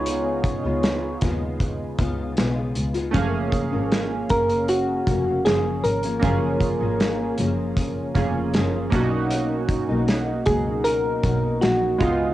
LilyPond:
<<
  \new Staff \with { instrumentName = "Synth keys" } { \time 4/4 \key fis \major \tempo 4 = 78 cis''4. r2 r8 | r4. ais'8 fis'4 gis'8 ais'8~ | ais'4. r2 r8 | r4. gis'8 ais'4 fis'8 eis'8 | }
  \new Staff \with { instrumentName = "Synth keys" } { \time 4/4 \key fis \major <b dis' eis' gis'>2.~ <b dis' eis' gis'>8 r8 | <a ais cis' gis' eis''>1 | <ais cis' eis' gis'>2~ <ais cis' eis' gis'>8 <ais cis' eis' gis'>4 <ais cis' d' dis' fis'>8~ | <ais cis' d' dis' fis'>2.~ <ais cis' d' dis' fis'>8 <gis b dis' eis'>8 | }
  \new Staff \with { instrumentName = "Steel-string acoustic guitar" } { \time 4/4 \key fis \major <cis gis b eis'>8. <gis b eis'>8. <cis gis b eis'>4 <cis gis b eis'>8 <cis gis b eis'>8. <gis b eis'>16 | <fis, cis eis ais cis'>8. <eis ais cis'>8. <cis ais cis'>4 <cis ais cis'>8 <cis eis ais cis'>8. <eis ais cis'>16 | <fis, cis eis ais cis'>8. <eis ais cis'>8. <cis eis ais cis'>4 <cis eis ais cis'>8 <cis eis ais cis'>8 <b, fis ais dis'>8~ | <b, fis ais dis'>8. <fis ais dis'>8. <b, fis ais dis'>4 <b, fis ais dis'>8 <fis ais dis'>8 <cis gis b eis'>8 | }
  \new Staff \with { instrumentName = "Double bass" } { \clef bass \time 4/4 \key fis \major cis,8. cis,8. dis,4 cis,8 b,,8 cis,8 | fis,,8. gis,,8. fis,,4 eis,,8 fis,,8 gis,,8 | fis,,8. gis,,8. fis,,4 eis,,8 fis,,8 b,,8~ | b,,8. b,,8. cis,4 b,,8 ais,,8 cis,8 | }
  \new DrumStaff \with { instrumentName = "Drums" } \drummode { \time 4/4 hh8 <hh bd>8 <hh sn>8 <hh bd sn>8 <hh bd>8 <hh bd>8 <hh sn>8 hh16 hh16 | <hh bd>8 <hh bd>8 <hh sn>8 <hh bd>16 hh16 hh8 <hh bd>8 <hh sn>8 hh16 hh16 | <hh bd>8 <hh bd>8 <hh sn>8 hh8 <hh bd>8 <hh bd>8 <hh sn>8 <hh bd>8 | hh8 <hh bd>8 <hh sn>8 <hh bd>8 hh8 <hh bd>8 <hh sn>8 <hh bd>8 | }
>>